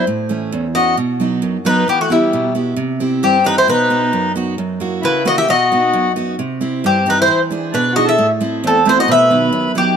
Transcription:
0.07 A2
0.29 E3 A3 C#4
0.52 E2
0.75 E3 A3 C#4 F#4 D#5
0.97 B2
1.20 F#3 B3 D#4
1.42 F#2
1.65 F#3 B3 D#4 B4
1.88 E3 B3 G4
2.00 A3 F#4
2.10 G3 B3 E4 G4
2.33 B2
2.55 B3 E4 G4
2.76 C3
3.00 C4 E4 G4
3.23 G2 C4 G4
3.44 C4 D#4 E4 G4 B4
3.57 E4 C5
3.68 B2 D#4 B4
3.90 B3 D#4 F#4
4.13 F#2
4.36 B3 D#4 F#4
4.58 F#2
4.80 A#3 E4 F#4
5.01 C#3 E4 B4
5.25 A#3 E4 F#4 D#5
5.38 G4 E5
5.48 B2 F#4 D#5
5.72 B3 D#4 F#4
5.93 F#2
6.16 B3 D#4 F#4
6.39 C3
6.61 C4 E4 G4
6.84 G2 C4 G4
7.06 C4 D#4 E4 G4 B4
7.20 E4 C5
7.28 E3
7.51 D4 E4 G#4
7.72 B2 D4 B4
7.93 E4 F#4 G#4 D#5
7.97 D4
8.05 A4 E5
8.18 A2
8.40 A3 C4 E4
8.64 E2 C4 A4
8.85 A3 C4 E4 C5
8.98 F#4 D#5
9.08 B2 B4 E5
9.30 D#3 F#3 B3
9.53 F#2
9.75 F#3 B3 D#4 G4

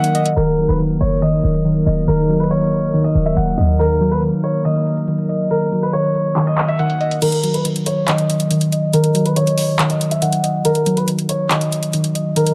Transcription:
Already playing: D#3 F#3 A#3 D#4 A#4 D#5 F#5
0.04 closed hi-hat
0.15 D#5, closed hi-hat
0.26 closed hi-hat
0.36 D#1 D#3 F#3 A#3 D#4 A#4, closed hi-hat
0.47 closed hi-hat
0.58 F#3, closed hi-hat
0.68 D#1 B4, closed hi-hat
0.79 D#3, closed hi-hat
0.90 closed hi-hat
1.00 F#1 C#5, closed hi-hat
1.22 D#3 D#5, closed hi-hat
1.33 closed hi-hat
1.43 D#1, closed hi-hat
1.54 closed hi-hat
1.65 D#3, closed hi-hat
1.75 closed hi-hat
1.86 D#1 D#5, closed hi-hat
2.08 D#1 D#3 A#4, closed hi-hat
2.18 closed hi-hat
2.29 F#3, closed hi-hat
2.40 B4, closed hi-hat
2.50 D#3 C#5, closed hi-hat
2.62 closed hi-hat
2.72 closed hi-hat
2.93 D#2 D#3, closed hi-hat
3.04 D#1 D#5, closed hi-hat
3.15 D#1, closed hi-hat
3.26 E5, closed hi-hat
3.36 D#1 D#3 F#5, closed hi-hat
3.47 closed hi-hat
3.58 D#2 D#5, closed hi-hat
3.79 D#3 A#4, closed hi-hat
3.89 closed hi-hat
4.01 F#3, closed hi-hat
4.11 B4, closed hi-hat
4.22 D#3, closed hi-hat
4.33 closed hi-hat
4.43 C#5, closed hi-hat
4.65 D#3 D#5, closed hi-hat
4.75 closed hi-hat
4.87 closed hi-hat
4.97 closed hi-hat
5.08 D#3, closed hi-hat
5.18 closed hi-hat
5.29 D#5, closed hi-hat
5.50 D#3 A#4, closed hi-hat
5.61 closed hi-hat
5.72 F#3, closed hi-hat
5.83 B4, closed hi-hat
5.93 D#3 C#5, closed hi-hat
6.04 closed hi-hat
6.15 closed hi-hat
6.36 D#3, clap, closed hi-hat
6.47 D#5, closed hi-hat
6.58 clap, closed hi-hat
6.68 E5, closed hi-hat
6.79 D#3 F#5, closed hi-hat
6.90 closed hi-hat
7.00 D#5, closed hi-hat
7.11 closed hi-hat
7.22 D#3 A#4, closed hi-hat, crash
7.32 closed hi-hat
7.43 F#3, closed hi-hat
7.54 B4, closed hi-hat
7.65 D#3, closed hi-hat
7.76 closed hi-hat
7.86 C#5, closed hi-hat
8.08 D#3 D#5, clap, closed hi-hat
8.18 closed hi-hat
8.30 closed hi-hat
8.40 closed hi-hat
8.51 D#3, closed hi-hat
8.61 closed hi-hat
8.72 D#5, closed hi-hat
8.93 D#3 A#4, closed hi-hat
9.04 closed hi-hat
9.15 F#3, closed hi-hat
9.26 B4, closed hi-hat
9.36 D#3 C#5, closed hi-hat
9.47 closed hi-hat
9.58 open hi-hat
9.79 D#3, clap, closed hi-hat
9.90 D#5, closed hi-hat
10.01 closed hi-hat
10.11 E5, closed hi-hat
10.22 D#3 F#5, closed hi-hat
10.32 closed hi-hat
10.43 D#5, closed hi-hat
10.65 D#3 A#4, closed hi-hat
10.75 closed hi-hat
10.86 F#3, closed hi-hat
10.97 B4, closed hi-hat
11.08 D#3, closed hi-hat
11.19 closed hi-hat
11.29 C#5, closed hi-hat
11.51 D#3, clap, closed hi-hat
11.61 closed hi-hat
11.72 closed hi-hat
11.83 closed hi-hat
11.93 D#3, closed hi-hat
12.04 closed hi-hat
12.15 D#5, closed hi-hat
12.36 D#3 A#4, closed hi-hat
12.47 closed hi-hat

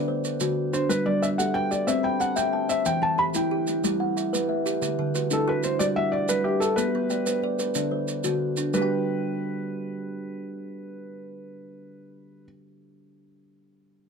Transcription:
Already playing: D3 D4 B4
0.08 C5
0.24 B4, maracas
0.40 D3 F#4, maracas
0.73 D4 C5, maracas
0.89 G3 B4, maracas
1.06 G3 D5
1.22 B4 E5, maracas
1.38 G4 A4 F#5, maracas
1.54 B4 G5
1.71 G4 D5, maracas
1.87 C4 B4 C5 E5, maracas
2.03 G5 B5
2.20 F#5 A5, maracas
2.36 C4 E5 G5, maracas
2.53 A5
2.69 C5 E5, maracas
2.85 E3 C5 G5, maracas
3.02 E3 A5
3.18 G4 C5 B5
3.34 E4 G5, maracas
3.51 G4
3.67 E4, maracas
3.84 G3 G4, maracas
4.00 F#5
4.17 E5, maracas
4.33 G3 B4, maracas
4.49 E5
4.66 G4, maracas
4.82 D3 G4, maracas
4.99 D3
5.15 F#4 B4, maracas
5.31 D4 E4 A4, maracas
5.48 F#4 B4
5.63 D4 C5, maracas
5.79 G3 F#4 G4 D5, maracas
5.96 E5 F#5
6.12 D5 E5
6.29 G3 B4, maracas
6.44 G4 E5
6.60 G4 A4, maracas
6.76 B3 G4 B4, maracas
6.95 B3
7.10 D5 G5, maracas
7.26 B4 C5, maracas
7.43 D5
7.59 B4, maracas
7.75 D3 D4 D5, maracas
7.91 C5
8.08 B4, maracas
8.24 D3 F#4, maracas
8.57 D4, maracas
8.74 G3 D4 G4 B4, maracas
8.78 G4 G5
8.82 G5

